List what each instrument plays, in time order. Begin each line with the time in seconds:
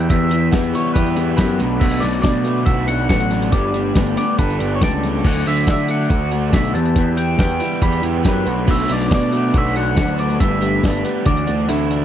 Already playing: picked electric bass E2, clean electric guitar G4 B4, transistor combo organ B4 E5 G5 E6
0.09 overdriven electric guitar E2, clean electric guitar E3 B3 E4 G4 B4 E5, kick, closed hi-hat
0.30 overdriven electric guitar E3, clean electric guitar E4 G4 B4, closed hi-hat
0.52 picked electric bass E2, clean electric guitar B3 E4 G4 B4, kick, snare, closed hi-hat, tambourine
0.63 closed hi-hat
0.73 overdriven electric guitar G3, clean electric guitar E4 G4 B4 C#5, closed hi-hat
0.94 picked electric bass E2, overdriven electric guitar G4, clean electric guitar B4, kick, closed hi-hat
1.07 closed hi-hat
1.16 picked electric bass E2, overdriven electric guitar B3, clean electric guitar E4 G4 B4, closed hi-hat
1.37 picked electric bass F#2, clean electric guitar E3 B3 E4 G4 B4, kick, snare, closed hi-hat, tambourine
1.58 picked electric bass B1, clean electric guitar B2 F#3 A3 D4 F#4 B4, transistor combo organ F#5 A5 D6, snare, closed hi-hat
1.80 clean electric guitar B2 F#3 A3 D4 F#4 B4 E5, kick, crash
1.91 closed hi-hat
2.00 picked electric bass B1, overdriven electric guitar F#3, clean electric guitar D4 F#4 B4 D5, closed hi-hat
2.05 clean electric guitar A3
2.13 closed hi-hat
2.22 picked electric bass B2, clean electric guitar A3 D4 F#4 B4 D5, kick, snare, closed hi-hat, tambourine
2.44 clean electric guitar A3 D4 F#4 B4, closed hi-hat
2.66 picked electric bass B1, overdriven electric guitar F#4, clean electric guitar E5, kick, closed hi-hat
2.86 clean electric guitar A3 D4 F#4 B4 F#5, closed hi-hat
3.08 picked electric bass A1, clean electric guitar B2 F#3 A3 D4 F#4 B4 F#5, kick, snare, closed hi-hat, tambourine
3.20 closed hi-hat
3.31 overdriven electric guitar D4, snare, closed hi-hat
3.42 closed hi-hat
3.50 picked electric bass G1, clean electric guitar G3 A3 D4 G4 B4 D5, transistor combo organ G5 A5, kick, closed hi-hat
3.73 overdriven electric guitar G3, clean electric guitar D4 G4 B4, closed hi-hat
3.94 picked electric bass G1, clean electric guitar A3 D4 G4 B4, kick, snare, closed hi-hat, tambourine
4.07 closed hi-hat
4.15 overdriven electric guitar B3, clean electric guitar D4 G4 B4 D5, closed hi-hat
4.39 picked electric bass G1, overdriven electric guitar A4, clean electric guitar B4, kick, closed hi-hat
4.50 closed hi-hat
4.59 picked electric bass G1, clean electric guitar D4 G4 B4, closed hi-hat
4.75 clean electric guitar C#5
4.80 picked electric bass C#2, clean electric guitar G3 A3 D4 G4 B4 D5, overdriven electric guitar A4, kick, snare, closed hi-hat, tambourine
5.03 overdriven electric guitar D4, snare, closed hi-hat
5.23 picked electric bass D2, clean electric guitar D3 F#3 A3 D4 F#4 F#5, transistor combo organ A4 D5 F#5, kick, crash
5.35 closed hi-hat
5.45 picked electric bass D2, overdriven electric guitar D3, clean electric guitar A3 D4 F#4 E5, closed hi-hat
5.57 closed hi-hat
5.66 picked electric bass D3, clean electric guitar F#3 A3 D4 F#4, kick, snare, closed hi-hat, tambourine
5.71 clean electric guitar E5
5.88 clean electric guitar A3 D4 F#4 F#5, closed hi-hat
6.09 picked electric bass D2, overdriven electric guitar F#4, kick, closed hi-hat
6.31 clean electric guitar A3 D4 F#4, closed hi-hat
6.52 picked electric bass B1, clean electric guitar D3 F#3 A3 D4 F#4 E5, kick, snare, closed hi-hat, tambourine
6.64 closed hi-hat
6.73 overdriven electric guitar E2, picked electric bass E2, clean electric guitar E3 B3 E4 G4 B4 A5, transistor combo organ B4 E5 G5 E6, closed hi-hat
6.85 closed hi-hat
6.95 overdriven electric guitar E2, clean electric guitar E3 B3 E4 G4 B4, kick, closed hi-hat
7.16 overdriven electric guitar E3, clean electric guitar E4 G4 B4 G5, closed hi-hat
7.37 picked electric bass E2, clean electric guitar B3 E4 G4 B4 G5, kick, snare, closed hi-hat, tambourine
7.49 closed hi-hat
7.59 overdriven electric guitar G3, clean electric guitar E4 G4 B4, closed hi-hat
7.82 picked electric bass E2, overdriven electric guitar G4, clean electric guitar B5, kick, closed hi-hat
7.93 closed hi-hat
8.02 picked electric bass E2, overdriven electric guitar B3, clean electric guitar E4 G4 B4, closed hi-hat
8.23 picked electric bass F#2, clean electric guitar E3 B3 E4 G4 B4, kick, snare, closed hi-hat, tambourine
8.28 clean electric guitar B4
8.44 picked electric bass B1, clean electric guitar B2 F#3 A3 D4 F#4 B4, transistor combo organ F#5 A5 D6, closed hi-hat
8.66 clean electric guitar B2 F#3 A3 D4 F#4 B4, kick, crash
8.71 clean electric guitar E5
8.78 closed hi-hat
8.88 picked electric bass B1, overdriven electric guitar F#3, clean electric guitar A3 D4 F#4 B4 D5, closed hi-hat
9.01 closed hi-hat
9.10 picked electric bass B2, clean electric guitar A3 D4 F#4 B4, kick, snare, closed hi-hat, tambourine
9.14 clean electric guitar D5
9.31 clean electric guitar A3 D4 F#4 B4, closed hi-hat
9.54 picked electric bass B1, overdriven electric guitar F#4, kick, closed hi-hat
9.58 clean electric guitar E5
9.75 clean electric guitar A3 D4 F#4 B4 F#5, closed hi-hat
9.96 picked electric bass D2, clean electric guitar B2 F#3 A3 D4 F#4 B4, kick, snare, closed hi-hat, tambourine
10.08 closed hi-hat
10.19 overdriven electric guitar D4, clean electric guitar D5, closed hi-hat
10.30 closed hi-hat
10.40 picked electric bass G1, clean electric guitar G3 A3 D4 G4 B4 E5, transistor combo organ B4 G5, kick, closed hi-hat
10.61 overdriven electric guitar G3, clean electric guitar D4 G4 B4, closed hi-hat
10.83 picked electric bass G1, clean electric guitar A3 D4 G4 B4, kick, snare, closed hi-hat, tambourine
10.94 closed hi-hat
11.04 overdriven electric guitar B3, clean electric guitar D4 G4 B4, closed hi-hat
11.25 picked electric bass D2, clean electric guitar D3 E3 A3 D4 F#4 D5, transistor combo organ D5 F#5 E6, kick, closed hi-hat
11.37 closed hi-hat
11.46 picked electric bass D2, clean electric guitar A3 D4 F#4, closed hi-hat
11.67 picked electric bass D2, clean electric guitar D3 E3 A3 D4 F#4, overdriven electric guitar E4, closed hi-hat, tambourine
11.91 overdriven electric guitar D4, closed hi-hat